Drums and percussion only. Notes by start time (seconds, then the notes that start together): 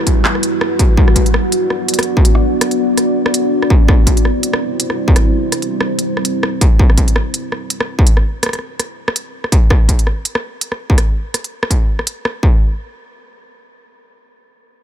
0.07 kick, closed hi-hat
0.25 clap
0.35 cross-stick
0.43 closed hi-hat
0.61 cross-stick
0.79 kick, closed hi-hat
0.97 kick
1.08 cross-stick
1.16 kick, closed hi-hat
1.26 closed hi-hat
1.34 cross-stick
1.52 closed hi-hat
1.70 cross-stick
1.89 closed hi-hat
1.94 closed hi-hat
1.99 cross-stick, closed hi-hat
2.03 closed hi-hat
2.17 kick
2.25 closed hi-hat
2.35 cross-stick
2.61 cross-stick, closed hi-hat
2.71 closed hi-hat
2.97 cross-stick, closed hi-hat
3.26 cross-stick
3.34 closed hi-hat
3.62 cross-stick
3.70 kick
3.88 kick, cross-stick
4.07 kick, closed hi-hat
4.17 closed hi-hat
4.25 cross-stick
4.43 closed hi-hat
4.53 cross-stick
4.80 closed hi-hat
4.90 cross-stick
5.08 kick
5.16 cross-stick, closed hi-hat
5.52 cross-stick, closed hi-hat
5.62 closed hi-hat
5.81 cross-stick
5.99 closed hi-hat
6.17 cross-stick
6.25 closed hi-hat
6.43 cross-stick
6.61 kick, closed hi-hat
6.79 kick
6.90 cross-stick
6.98 kick, closed hi-hat
7.08 closed hi-hat
7.16 cross-stick
7.34 closed hi-hat
7.52 cross-stick
7.70 closed hi-hat
7.80 cross-stick
7.99 kick
8.07 closed hi-hat
8.17 cross-stick
8.43 cross-stick, closed hi-hat
8.46 cross-stick
8.49 cross-stick
8.53 cross-stick, closed hi-hat
8.55 cross-stick
8.59 cross-stick
8.80 cross-stick, closed hi-hat
9.08 cross-stick
9.16 closed hi-hat
9.44 cross-stick
9.52 kick, closed hi-hat
9.70 kick, cross-stick
9.89 kick, closed hi-hat
9.99 closed hi-hat
10.07 cross-stick
10.25 closed hi-hat
10.35 cross-stick
10.61 closed hi-hat
10.72 cross-stick
10.90 kick
10.98 cross-stick, closed hi-hat
11.34 cross-stick, closed hi-hat
11.44 closed hi-hat
11.63 cross-stick
11.70 kick, closed hi-hat
11.99 cross-stick
12.07 closed hi-hat
12.25 cross-stick
12.43 kick